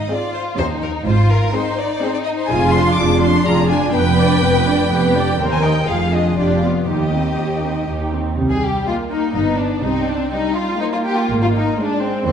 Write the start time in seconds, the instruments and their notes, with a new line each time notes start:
0.09 viola section C4 G#4, violin section F4 D5
0.34 violin section C5
0.57 cello section D#2, double bass section D#2, viola section C#4 G4, violin section D#4 C5
0.82 violin section A#4
1.05 double bass section G#1, cello section G#2, violin section F4 C5
1.29 violin section A#4
1.53 viola section C4 G#4, violin section D#4 C5
1.77 violin section D5
2.02 viola section C4 G#4, violin section C5
2.13 violin section D5
2.25 violin section D#5
2.37 violin section C5
2.48 double bass section F1, cello section F2, viola section F4 G#4, violin section F4 G#5
2.73 viola section D4 F4, violin section C6
2.96 double bass section F1, cello section F2, violin section D4 D6, viola section F4 G#4
3.21 viola section D4 F4, violin section C6
3.45 double bass section F1, cello section F2, viola section F4 G#4, violin section A#5
3.69 viola section D4 F4, violin section G#5
3.93 double bass section F1, cello section F2, viola section B3 B4, violin section B4 G5
4.17 viola section D4 D5
4.41 double bass section F1, cello section F2, viola section B3 B4
4.66 viola section D4 D5
4.89 double bass section F1, cello section F2, viola section B3 B4, violin section G4
5.15 viola section D4 D5
5.38 cello section D#2, double bass section D#2, viola section C4 C5, violin section A#4
5.51 violin section G#5
5.63 viola section D#4 D#5, violin section G5
5.87 double bass section F1, cello section F2, viola section F4 G#4, violin section G#4 F5
6.12 viola section D4 F4, violin section D#5
6.36 double bass section F1, cello section F2, viola section D4 G4, violin section F4 D5
6.62 viola section B3 F4, violin section D5
6.86 double bass section D#2, cello section D#2, viola section D#4 G4, violin section G4 D#5
7.13 viola section C4 D#4
7.37 double bass section D#2, cello section D#2, viola section D#4 G4
7.63 viola section C4 D#4
7.88 double bass section D#2, cello section D#2, viola section D#4 G4
8.13 viola section C4 D#4
8.37 double bass section C2, cello section C3, viola section G3
8.49 violin section G#4
8.63 violin section G4
8.86 viola section A#3, violin section F4 D#5
9.11 violin section D#4
9.34 double bass section G1, cello section G2, viola section B3, violin section D#4 B4
9.59 violin section D4
9.83 double bass section C2, cello section C3, viola section C4, violin section D#4
10.08 violin section D4
10.32 viola section G3, violin section D#4 C5
10.57 violin section F4
10.81 viola section A#3, violin section D#4 C5
10.94 violin section F4
11.06 violin section G4
11.17 violin section F4
11.30 double bass section G#1, cello section G#2
11.42 violin section F4
11.54 violin section D#4
11.78 viola section G#3, violin section D4 C5
12.02 violin section C4
12.25 double bass section D#2, cello section D#2, viola section G3, violin section C4 C#5